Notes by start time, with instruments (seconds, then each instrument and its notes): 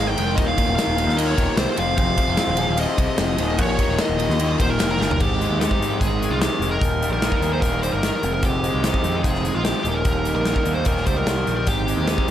Already playing: overdriven electric guitar G#2 D#3, analog synth pad G#3 D#4 A#4 C5 G5
0.00 picked electric bass G#1, overdriven electric guitar G#3
0.05 tine electric piano D#5, lead electric guitar G5
0.17 picked electric bass F1, overdriven electric guitar G#2 D#3 G#3, ride, tambourine
0.36 picked electric bass D#1, overdriven electric guitar D#2 A#2 D#3, analog synth pad A#3 G4, tine electric piano A#4, lead electric guitar D#5, kick, ride
0.46 tine electric piano C#5, lead electric guitar F5
0.57 overdriven electric guitar D#2 A#2 D#3, kick, ride
0.67 picked electric bass D#1, tambourine
0.76 overdriven electric guitar D#2 A#2 D#3, tine electric piano A#4, lead electric guitar F5, snare, ride, tambourine
0.88 picked electric bass D#1
0.97 overdriven electric guitar D#2 A#2 D#3, ride, tambourine
1.07 picked electric bass D#2, snare
1.15 overdriven electric guitar D#2 A#2 D#3, tine electric piano A#4, lead electric guitar D#5, ride
1.25 tine electric piano A#4, lead electric guitar C#5, tambourine
1.37 picked electric bass D#1, overdriven electric guitar D#2 A#2 D#3, kick, ride, tambourine
1.57 picked electric bass C2, overdriven electric guitar D#2 A#2 D#3, tine electric piano G4, lead electric guitar C5, snare, ride, tambourine
1.76 picked electric bass F1, overdriven electric guitar F2 C3 F3, analog synth pad F3 C4 G#4, tine electric piano C5, lead electric guitar F5, ride, tambourine
1.87 tambourine
1.96 picked electric bass F1, overdriven electric guitar F2 C3 F3, tine electric piano C5, lead electric guitar F5, kick, ride
2.17 overdriven electric guitar F2 C3 F3, kick, ride
2.27 picked electric bass F1, tambourine
2.37 overdriven electric guitar F2 C3 F3, snare, ride, tambourine
2.48 picked electric bass D#1
2.57 overdriven electric guitar F2 C3 F3, ride, tambourine
2.68 picked electric bass D#1
2.77 overdriven electric guitar F2 C3 F3, tine electric piano C5, lead electric guitar D#5, ride
2.88 tambourine
2.97 picked electric bass C2, overdriven electric guitar F2 C3 F3, kick, ride, tambourine
3.17 picked electric bass F1, overdriven electric guitar F2 C3 F3, snare, ride, tambourine
3.28 tambourine
3.38 picked electric bass D#1, overdriven electric guitar D#2 A#2 D#3, analog synth pad A#3 D#4, ride, tambourine
3.58 picked electric bass A#1, overdriven electric guitar D#2 A#2 D#3, tine electric piano A#4, lead electric guitar C#5, kick, ride, tambourine
3.78 overdriven electric guitar D#2 A#2 D#3, kick, ride, tambourine
3.89 picked electric bass D#1
3.98 overdriven electric guitar D#2 A#2 D#3, tine electric piano A#4, lead electric guitar D#5, snare, ride, tambourine
4.09 picked electric bass D#1
4.19 overdriven electric guitar D#2 A#2 D#3, ride, tambourine
4.29 picked electric bass D#2, snare, tambourine
4.39 overdriven electric guitar D#2 A#2 D#3, ride, tambourine
4.49 tambourine
4.58 picked electric bass D#1, overdriven electric guitar D#2 A#2 D#3, lead electric guitar C5, kick, ride, tambourine
4.70 lead electric guitar A#4
4.78 picked electric bass F1, overdriven electric guitar D#2 A#2 D#3, snare, ride, tambourine
4.91 lead electric guitar A#4
4.98 picked electric bass G1, overdriven electric guitar D#2 A#2 D#3, snare, tambourine
5.09 lead electric guitar A#4, floor tom, tambourine
5.19 picked electric bass G#1, overdriven electric guitar G#2 D#3 G#3 C4 D#4, analog synth pad G#3 D#5 G5 C6, lead electric guitar G4, kick, crash
5.40 overdriven electric guitar G#3, closed hi-hat
5.50 picked electric bass D#2
5.59 overdriven electric guitar D#4, lead electric guitar G4, snare, closed hi-hat
5.71 kick
5.80 picked electric bass G#2, overdriven electric guitar C4, closed hi-hat
6.00 picked electric bass G#1, overdriven electric guitar D#3, lead electric guitar G#4, kick, closed hi-hat
6.22 overdriven electric guitar G#3, closed hi-hat
6.30 picked electric bass C2, lead electric guitar F4
6.40 overdriven electric guitar D#3, lead electric guitar G4, snare, closed hi-hat
6.60 picked electric bass F1, overdriven electric guitar G#3, closed hi-hat
6.71 lead electric guitar A#4
6.81 picked electric bass D#1, overdriven electric guitar D#2 A#2 D#3 G3 A#3 D#4, analog synth pad A#4 D#6, kick, closed hi-hat
7.02 overdriven electric guitar G3, closed hi-hat
7.10 picked electric bass A#1, lead electric guitar A#4
7.22 overdriven electric guitar D#4, snare, closed hi-hat
7.32 kick
7.41 picked electric bass D#2, overdriven electric guitar A#3, closed hi-hat
7.53 lead electric guitar C5
7.61 picked electric bass D#1, overdriven electric guitar D#3, lead electric guitar A#4, kick, closed hi-hat
7.83 overdriven electric guitar G3, lead electric guitar C5, closed hi-hat
7.93 picked electric bass G1, lead electric guitar A#4
8.03 overdriven electric guitar D#3, snare, closed hi-hat
8.21 picked electric bass F1, overdriven electric guitar F2 C3 F3 G#3 C4 D#4, analog synth pad C5 D#5 F5 D#6, closed hi-hat
8.34 lead electric guitar A#4
8.43 picked electric bass F1, overdriven electric guitar F2, lead electric guitar G4, kick, closed hi-hat
8.64 overdriven electric guitar G#3, closed hi-hat
8.74 picked electric bass C2
8.84 overdriven electric guitar D#4, lead electric guitar G4, snare, closed hi-hat
8.94 kick
9.04 picked electric bass F2, overdriven electric guitar C4, closed hi-hat
9.23 picked electric bass F1, overdriven electric guitar F3, lead electric guitar G#4, kick, closed hi-hat
9.35 snare
9.45 overdriven electric guitar G#3, closed hi-hat
9.55 picked electric bass A#1, lead electric guitar F4
9.64 overdriven electric guitar F3, lead electric guitar G4, snare, closed hi-hat
9.84 picked electric bass D#1, overdriven electric guitar D#2 A#2 D#3 G3 A#3 D#4, analog synth pad A#4 D#5 G5 D#6, closed hi-hat
9.94 lead electric guitar A#4
10.05 picked electric bass D#1, overdriven electric guitar D#2, kick, closed hi-hat
10.25 overdriven electric guitar G3, closed hi-hat
10.35 picked electric bass A#1, lead electric guitar A#4
10.45 overdriven electric guitar D#4, snare, closed hi-hat
10.56 kick
10.66 picked electric bass D#2, overdriven electric guitar A#3, closed hi-hat
10.74 lead electric guitar C5
10.85 picked electric bass D#1, overdriven electric guitar D#3, lead electric guitar A#4, kick, closed hi-hat
10.97 snare
11.06 picked electric bass C#2, overdriven electric guitar G3, lead electric guitar C5, kick, closed hi-hat
11.17 lead electric guitar A#4
11.26 picked electric bass C2, overdriven electric guitar D#3, snare, closed hi-hat
11.46 picked electric bass A#1, overdriven electric guitar G3, closed hi-hat
11.57 lead electric guitar A#4
11.67 picked electric bass G#1, overdriven electric guitar G#2 D#3 G#3 C4 D#4, analog synth pad G#3 C6, lead electric guitar G4, kick, closed hi-hat
11.87 overdriven electric guitar G#3, closed hi-hat
11.97 picked electric bass D#2
12.07 overdriven electric guitar D#4, lead electric guitar G4, snare, closed hi-hat
12.18 kick
12.28 overdriven electric guitar C4